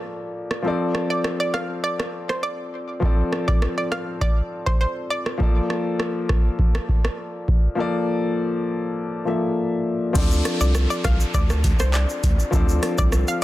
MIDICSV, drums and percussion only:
0, 0, Header, 1, 2, 480
1, 0, Start_track
1, 0, Key_signature, -1, "minor"
1, 0, Tempo, 594059
1, 525, Time_signature, 4, 2, 24, 8
1, 10859, End_track
2, 0, Start_track
2, 0, Title_t, "Drums"
2, 410, Note_on_c, 9, 37, 86
2, 491, Note_off_c, 9, 37, 0
2, 765, Note_on_c, 9, 37, 89
2, 846, Note_off_c, 9, 37, 0
2, 1005, Note_on_c, 9, 37, 98
2, 1086, Note_off_c, 9, 37, 0
2, 1245, Note_on_c, 9, 37, 89
2, 1326, Note_off_c, 9, 37, 0
2, 1613, Note_on_c, 9, 37, 100
2, 1693, Note_off_c, 9, 37, 0
2, 1855, Note_on_c, 9, 37, 91
2, 1936, Note_off_c, 9, 37, 0
2, 2445, Note_on_c, 9, 36, 113
2, 2526, Note_off_c, 9, 36, 0
2, 2687, Note_on_c, 9, 37, 86
2, 2768, Note_off_c, 9, 37, 0
2, 2813, Note_on_c, 9, 36, 90
2, 2894, Note_off_c, 9, 36, 0
2, 2926, Note_on_c, 9, 37, 101
2, 3007, Note_off_c, 9, 37, 0
2, 3166, Note_on_c, 9, 37, 91
2, 3246, Note_off_c, 9, 37, 0
2, 3404, Note_on_c, 9, 36, 98
2, 3484, Note_off_c, 9, 36, 0
2, 3771, Note_on_c, 9, 36, 87
2, 3852, Note_off_c, 9, 36, 0
2, 4251, Note_on_c, 9, 37, 85
2, 4332, Note_off_c, 9, 37, 0
2, 4365, Note_on_c, 9, 36, 110
2, 4446, Note_off_c, 9, 36, 0
2, 4606, Note_on_c, 9, 37, 88
2, 4687, Note_off_c, 9, 37, 0
2, 4845, Note_on_c, 9, 37, 93
2, 4925, Note_off_c, 9, 37, 0
2, 5085, Note_on_c, 9, 37, 91
2, 5086, Note_on_c, 9, 36, 95
2, 5166, Note_off_c, 9, 37, 0
2, 5167, Note_off_c, 9, 36, 0
2, 5324, Note_on_c, 9, 36, 101
2, 5405, Note_off_c, 9, 36, 0
2, 5453, Note_on_c, 9, 37, 97
2, 5534, Note_off_c, 9, 37, 0
2, 5566, Note_on_c, 9, 36, 82
2, 5647, Note_off_c, 9, 36, 0
2, 5693, Note_on_c, 9, 37, 95
2, 5774, Note_off_c, 9, 37, 0
2, 6045, Note_on_c, 9, 36, 91
2, 6126, Note_off_c, 9, 36, 0
2, 8204, Note_on_c, 9, 49, 96
2, 8204, Note_on_c, 9, 82, 61
2, 8205, Note_on_c, 9, 36, 117
2, 8285, Note_off_c, 9, 49, 0
2, 8285, Note_off_c, 9, 82, 0
2, 8286, Note_off_c, 9, 36, 0
2, 8332, Note_on_c, 9, 82, 57
2, 8413, Note_off_c, 9, 82, 0
2, 8445, Note_on_c, 9, 37, 93
2, 8446, Note_on_c, 9, 42, 72
2, 8446, Note_on_c, 9, 82, 50
2, 8526, Note_off_c, 9, 37, 0
2, 8527, Note_off_c, 9, 42, 0
2, 8527, Note_off_c, 9, 82, 0
2, 8571, Note_on_c, 9, 82, 83
2, 8652, Note_off_c, 9, 82, 0
2, 8684, Note_on_c, 9, 37, 104
2, 8685, Note_on_c, 9, 82, 85
2, 8765, Note_off_c, 9, 37, 0
2, 8766, Note_off_c, 9, 82, 0
2, 8811, Note_on_c, 9, 82, 59
2, 8891, Note_off_c, 9, 82, 0
2, 8924, Note_on_c, 9, 37, 97
2, 8924, Note_on_c, 9, 42, 70
2, 8924, Note_on_c, 9, 82, 50
2, 8926, Note_on_c, 9, 36, 99
2, 9004, Note_off_c, 9, 37, 0
2, 9005, Note_off_c, 9, 42, 0
2, 9005, Note_off_c, 9, 82, 0
2, 9007, Note_off_c, 9, 36, 0
2, 9053, Note_on_c, 9, 82, 80
2, 9134, Note_off_c, 9, 82, 0
2, 9164, Note_on_c, 9, 36, 107
2, 9165, Note_on_c, 9, 82, 73
2, 9244, Note_off_c, 9, 36, 0
2, 9246, Note_off_c, 9, 82, 0
2, 9292, Note_on_c, 9, 37, 108
2, 9292, Note_on_c, 9, 82, 59
2, 9372, Note_off_c, 9, 82, 0
2, 9373, Note_off_c, 9, 37, 0
2, 9405, Note_on_c, 9, 42, 91
2, 9405, Note_on_c, 9, 82, 63
2, 9406, Note_on_c, 9, 36, 90
2, 9486, Note_off_c, 9, 42, 0
2, 9486, Note_off_c, 9, 82, 0
2, 9487, Note_off_c, 9, 36, 0
2, 9531, Note_on_c, 9, 82, 82
2, 9535, Note_on_c, 9, 37, 102
2, 9612, Note_off_c, 9, 82, 0
2, 9616, Note_off_c, 9, 37, 0
2, 9644, Note_on_c, 9, 82, 74
2, 9646, Note_on_c, 9, 39, 106
2, 9724, Note_off_c, 9, 82, 0
2, 9726, Note_off_c, 9, 39, 0
2, 9772, Note_on_c, 9, 82, 45
2, 9853, Note_off_c, 9, 82, 0
2, 9886, Note_on_c, 9, 36, 100
2, 9887, Note_on_c, 9, 42, 80
2, 9887, Note_on_c, 9, 82, 60
2, 9967, Note_off_c, 9, 36, 0
2, 9968, Note_off_c, 9, 42, 0
2, 9968, Note_off_c, 9, 82, 0
2, 10015, Note_on_c, 9, 82, 79
2, 10095, Note_off_c, 9, 82, 0
2, 10125, Note_on_c, 9, 36, 119
2, 10125, Note_on_c, 9, 82, 63
2, 10206, Note_off_c, 9, 36, 0
2, 10206, Note_off_c, 9, 82, 0
2, 10253, Note_on_c, 9, 82, 55
2, 10333, Note_off_c, 9, 82, 0
2, 10364, Note_on_c, 9, 37, 94
2, 10365, Note_on_c, 9, 42, 71
2, 10365, Note_on_c, 9, 82, 51
2, 10445, Note_off_c, 9, 37, 0
2, 10446, Note_off_c, 9, 42, 0
2, 10446, Note_off_c, 9, 82, 0
2, 10489, Note_on_c, 9, 82, 80
2, 10493, Note_on_c, 9, 36, 102
2, 10570, Note_off_c, 9, 82, 0
2, 10573, Note_off_c, 9, 36, 0
2, 10603, Note_on_c, 9, 37, 104
2, 10604, Note_on_c, 9, 82, 85
2, 10684, Note_off_c, 9, 37, 0
2, 10685, Note_off_c, 9, 82, 0
2, 10729, Note_on_c, 9, 82, 59
2, 10810, Note_off_c, 9, 82, 0
2, 10859, End_track
0, 0, End_of_file